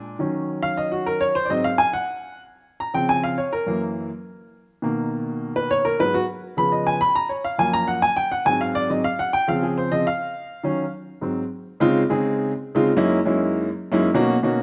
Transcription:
upright piano
Already playing: A#2 G#3 D4
0.19 D#3 F#3 C#4
0.63 F5
0.77 D#5
0.92 F#4
1.06 A#4
1.21 C#5
1.35 C5
1.45 D5
1.49 G#2 F#3 C4 D#5
1.64 F5
1.78 G#5
1.93 F#5
2.80 A#5
2.94 C#3 F3 C4 G5
3.09 G#5
3.24 F5
3.38 C#5
3.53 A#4
3.66 F#2 E3 A#3
4.82 B2 D#3 A#3
5.56 B4
5.71 C#5
5.85 A#4
5.99 G#2 F#3 B3 B4
6.14 F#4
6.57 C#3 F3 B3 B5
6.72 D#5
6.87 G#5
7.01 B5
7.15 A#5
7.29 C#5
7.44 F5
7.58 F#2 F3 A#3 G#5
7.73 A#5
7.88 F#5
8.02 G#5
8.16 G5
8.32 F#5
8.45 G#2 F#3 C4 G#5
8.61 F5
8.75 D5
8.89 G#2 F#3 C4 D#5
9.04 F5
9.19 F#5
9.33 G5
9.48 C#3 F3 C4 F5
9.63 G#4
9.78 C5
9.91 C#3 F3 C4 D#5
10.07 F5
10.63 D#3 F#3 C#4
11.21 G#2 F#3 C4
11.80 C#3 G#3 C4 D#4 F4
12.10 C#3 G#3 C4 D#4 G#4
12.75 C#3 G#3 C4 D#4 F4
12.96 F#2 G#3 A#3 C#4 D#4 E4
13.25 F#2 G#3 A#3 C#4 D#4 E4
13.92 F#2 G#3 A#3 C#4 D#4 E4
14.14 B2 A#3 C#4 D#4 F#4
14.43 B2 A#3 C#4 D#4 F#4

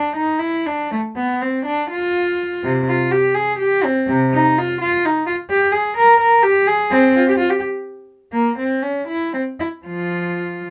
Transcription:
cello
Already playing: D4
0.16 D#4
0.39 E4
0.66 D4
0.92 A3
1.16 B3
1.42 C4
1.65 D4
1.90 F4
2.64 C3
2.88 F4
3.11 G4
3.34 G#4
3.59 G4
3.84 C4
4.08 C3
4.33 D#4
4.58 F4
4.81 F4
5.05 D#4
5.26 F4
5.50 G4
5.72 G#4
5.97 A#4
6.20 A#4
6.43 G4
6.67 G#4
6.91 C4
7.16 F4
7.28 G4
7.38 F4
7.50 G4
8.33 A#3
8.58 C4
8.82 C#4
9.08 E4
9.34 C4
9.60 E4
9.86 F3 F4

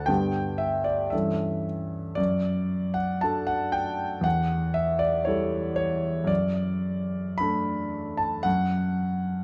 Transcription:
grand piano
Already playing: D3 A3 F#4 F#5 A5
0.06 G2 D3 B3 G4 G5
0.58 E5
0.84 D5
1.10 G2 E3 C#4 A4 E5
2.15 F#2 D5
2.94 F#5
3.21 F#3 D4 A4 A5
3.47 F#5
3.72 G5
4.21 E2 F#5
4.74 E5
4.99 D5
5.25 G3 E4 A4 C#5
5.76 C#5
6.24 F#2 D5
7.38 A3 D4 A4 B5
8.17 A5
8.43 F#2 F#5

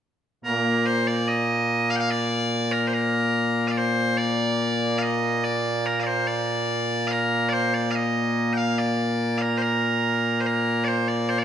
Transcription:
bagpipes
0.44 A#2 A#3 A#4
0.86 C5
1.07 D5
1.28 D#5
1.90 F5
1.96 G5
2.00 F5
2.10 D5
2.72 A#4
2.87 C5
2.94 A#4
3.68 D5 F5
3.78 C5
4.17 D5
4.98 D#5 F5
5.44 D5
5.86 A#4
6.00 D5 F5
6.07 C5
6.27 D5
7.07 F5
7.11 A#4
7.49 C5 D5
7.74 D5
7.91 F5
7.95 D#5
8.53 G5
8.57 F5
8.78 D5
9.38 A#4 F5
9.58 C5
9.62 A#4
10.40 C5
10.46 A#4
10.84 C5 D5
11.08 D5
11.29 C5
11.39 D5

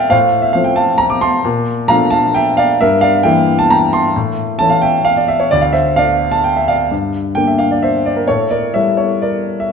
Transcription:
grand piano
Already playing: A2 F3 A3 C4 A#4 C5 D5 E5 F5 G5
0.10 A2 C5 F5
0.42 E5
0.53 F3 A3 C4 F5
0.64 G5
0.76 F5 A5
0.98 A#5
1.10 D6
1.21 A5 C6
1.45 A#2
1.88 F3 A3 D4 F5 A#5
2.10 F5 A5
2.34 E5 G5
2.57 D5 F5
2.81 G2 A#4 E5
3.01 D5 F5
3.23 E3 A#3 E4 E5 G5
3.59 A5
3.70 G5 A#5
3.93 A5 C6
4.16 A2
4.59 E3 A3 C#4 A5
4.70 F5
4.82 E5 G5
5.05 F5
5.17 D5
5.28 E5
5.40 C#5
5.51 D2 D5
5.61 F5
5.73 C5 E5
5.96 D3 A3 D4 D5 F5
6.31 A5
6.44 G5
6.57 E5
6.68 D5 F5
6.91 G2
7.35 D3 A#3 D4 G5
7.47 E5
7.58 F5
7.71 D5
7.82 C5 E5
8.06 D5
8.16 A#4
8.27 A2 A4 C#5
8.50 A#4 D5
8.74 G3 A3 E4 C#5 E5
8.97 A4 C#5
9.22 A#4 D5
9.60 E5

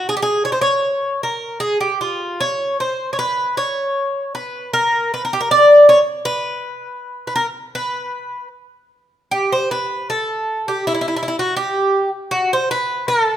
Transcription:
bouzouki
0.09 G#4
0.17 G4
0.22 G#4
0.45 C#5
0.52 C5
0.61 C#5
1.23 A#4
1.60 G#4
1.81 G4
2.01 F4
2.40 C#5
2.80 C5
3.13 C#5
3.19 B4
3.57 C#5
4.35 B4
4.73 A#4
5.14 B4
5.25 A#4
5.33 G4
5.41 A#4
5.51 D5
5.89 C#5
6.25 B4
7.27 B4
7.36 A#4
7.75 B4
9.31 G4
9.52 C5
9.71 B4
10.10 A4
10.68 G4
10.87 E4
10.94 E4
11.01 E4
11.08 E4
11.16 E4
11.23 E4
11.28 E4
11.39 F#4
11.56 G4
12.31 F#4
12.53 C5
12.71 B4
13.08 A4

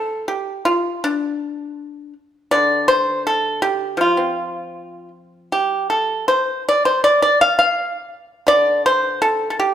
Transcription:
pipa
Already playing: A2 A4
0.28 G4
0.65 F4
1.04 D4
2.51 D3 D5
2.88 C5
3.27 A4
3.62 G4
3.97 F3 F4
4.17 C4
5.52 G4
5.90 A4
6.28 C5
6.69 D5
6.85 C5
7.04 D5
7.22 D5
7.41 F5
7.59 F5
8.47 D3 D5
8.86 C5
9.22 A4
9.50 A4
9.60 G4

